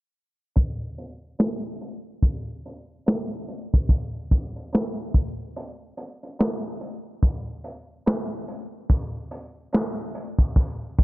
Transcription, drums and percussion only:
0.56 kick, closed hi-hat
0.98 closed hi-hat
1.39 snare, closed hi-hat
1.81 closed hi-hat
2.22 kick, closed hi-hat
2.66 closed hi-hat
3.06 snare, closed hi-hat
3.31 closed hi-hat
3.48 closed hi-hat
3.74 kick
3.89 kick, closed hi-hat
4.31 kick, closed hi-hat
4.56 closed hi-hat
4.73 snare, closed hi-hat
5.14 kick, closed hi-hat
5.56 closed hi-hat
5.97 closed hi-hat
6.23 closed hi-hat
6.39 snare, closed hi-hat
6.81 closed hi-hat
7.23 kick, closed hi-hat
7.64 closed hi-hat
8.06 snare, closed hi-hat
8.48 closed hi-hat
8.90 kick, closed hi-hat
9.31 closed hi-hat
9.73 snare, closed hi-hat
9.98 closed hi-hat
10.15 closed hi-hat
10.39 kick
10.56 kick, closed hi-hat
10.98 kick, closed hi-hat

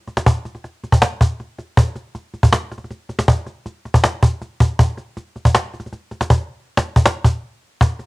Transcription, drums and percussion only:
0.07 cajon slap
0.17 cajon slap
0.26 cajon bass
0.45 cajon slap
0.55 cajon slap
0.64 cajon slap
0.83 cajon slap
0.92 cajon bass
1.02 cajon slap
1.21 cajon bass
1.40 cajon slap
1.58 cajon slap
1.77 cajon bass
1.95 cajon slap
2.15 cajon slap
2.34 cajon slap
2.43 cajon bass
2.53 cajon slap
2.72 cajon slap
2.78 cajon slap
2.84 cajon slap
2.91 cajon slap
3.09 cajon slap
3.19 cajon slap
3.28 cajon bass
3.47 cajon slap
3.66 cajon slap
3.85 cajon slap
3.94 cajon bass
4.04 cajon slap
4.23 cajon bass
4.42 cajon slap
4.60 cajon bass
4.79 cajon bass
4.97 cajon slap
5.17 cajon slap
5.36 cajon slap
5.45 cajon bass
5.55 cajon slap
5.74 cajon slap
5.80 cajon slap
5.86 cajon slap
5.93 cajon slap
6.11 cajon slap
6.21 cajon slap
6.30 cajon bass
6.77 cajon slap
6.96 cajon bass
7.05 cajon slap
7.24 cajon bass
7.81 cajon bass
7.99 cajon slap

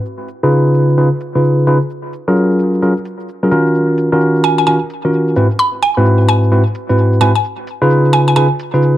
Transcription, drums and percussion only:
0.05 shaker
0.28 closed hi-hat, shaker
0.43 shaker
0.52 shaker
0.66 shaker
0.74 closed hi-hat, shaker
0.89 shaker
0.98 shaker
1.21 closed hi-hat, shaker
1.35 shaker
1.44 shaker
1.59 shaker
1.67 closed hi-hat, shaker
1.82 shaker
1.90 shaker
2.13 closed hi-hat, shaker
2.28 shaker
2.36 shaker
2.51 shaker
2.59 closed hi-hat, shaker
2.74 shaker
2.82 shaker
2.97 shaker
3.05 closed hi-hat, shaker
3.20 shaker
3.29 shaker
3.43 shaker
3.52 closed hi-hat, shaker
3.66 shaker
3.75 shaker
3.98 closed hi-hat, shaker
4.13 shaker
4.21 shaker
4.36 shaker
4.44 closed hi-hat, shaker
4.59 shaker
4.67 shaker
4.90 closed hi-hat, shaker
5.05 shaker
5.13 shaker
5.28 shaker
5.36 closed hi-hat, shaker
5.51 shaker
5.59 shaker
5.82 closed hi-hat, shaker
5.97 shaker
6.06 shaker
6.20 shaker
6.29 closed hi-hat, shaker
6.44 shaker
6.52 shaker
6.66 shaker
6.75 closed hi-hat, shaker
6.90 shaker
6.98 shaker
7.13 shaker
7.21 closed hi-hat, shaker
7.36 shaker
7.44 shaker
7.67 closed hi-hat, shaker
7.82 shaker
7.90 shaker
8.05 shaker
8.13 closed hi-hat, shaker
8.28 shaker
8.36 shaker
8.59 closed hi-hat, shaker
8.74 shaker
8.82 shaker

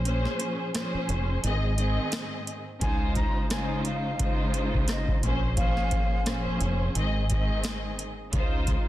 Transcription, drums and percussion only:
0.05 closed hi-hat
0.25 snare
0.40 closed hi-hat
0.75 cross-stick, snare, closed hi-hat
1.09 closed hi-hat
1.44 closed hi-hat
1.78 closed hi-hat
2.12 cross-stick, snare, closed hi-hat
2.47 closed hi-hat
2.81 kick, closed hi-hat
3.15 kick, closed hi-hat
3.50 cross-stick, snare, closed hi-hat
3.85 closed hi-hat
4.19 kick, closed hi-hat
4.54 closed hi-hat
4.74 kick
4.88 cross-stick, snare, closed hi-hat
5.08 kick
5.23 closed hi-hat
5.57 kick, closed hi-hat
5.77 snare
5.91 kick, closed hi-hat
6.26 cross-stick, snare, closed hi-hat
6.61 closed hi-hat
6.95 closed hi-hat
7.30 kick, closed hi-hat
7.64 cross-stick, snare, closed hi-hat
7.99 closed hi-hat
8.33 kick, closed hi-hat
8.67 kick, closed hi-hat

